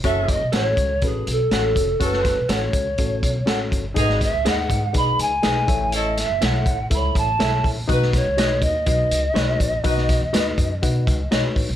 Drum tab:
HH |x-x-x-x-x-x-x-x-|x-x-x-x-x-x-x-x-|x-x-x-x-x-x-x-x-|x-x-x-x-x-x-x-o-|
SD |----o-------o---|-oo-o-------o---|-oo-o-------o---|--o-o-------o---|
BD |o-o---o-o-----o-|o-o---o-o-o---o-|o-o---o-o-----o-|------o-o-o---o-|

HH |x-x-x-x-x-x-x-x-|x-x-x-x-x-x-x-o-|
SD |-oo-o-------o---|-oo-o-------o---|
BD |o-o---o-o-----o-|o-o---o-o-o---o-|